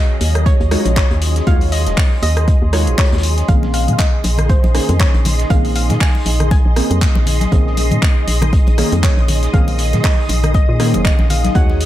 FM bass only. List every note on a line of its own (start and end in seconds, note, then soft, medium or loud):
0.21 0.53 D#2 medium
0.60 0.76 D#2 loud
0.86 1.02 A#1 loud
1.11 1.41 D#2 medium
1.47 1.88 D#2 medium
1.87 1.94 D#1 loud
2.23 2.55 D#2 medium
2.62 2.89 D#2 loud
2.87 2.95 A#1 medium
3.13 3.43 D#2 medium
3.49 3.90 A#1 loud
3.88 3.96 A#2 loud
4.24 4.56 A#1 medium
4.64 4.80 A#1 loud
4.89 5.05 F2 loud
5.14 5.45 A#1 medium
5.50 5.91 A#1 loud
5.90 5.97 A#2 loud
6.26 6.58 A#1 medium
6.65 6.81 A#1 loud
6.91 7.07 F2 loud
7.16 7.46 A#1 medium
7.52 7.93 A#1 loud
7.92 7.99 A#2 loud
8.28 8.60 A#1 medium
8.67 8.83 A#1 loud
8.92 9.08 F2 loud
9.17 9.48 A#1 medium
9.54 9.95 A#1 loud
9.93 10.01 A#2 loud
10.29 10.61 A#1 medium
10.69 10.95 A#2 medium
10.94 11.10 F1 medium
11.19 11.50 A#1 medium
11.55 11.86 D#2 loud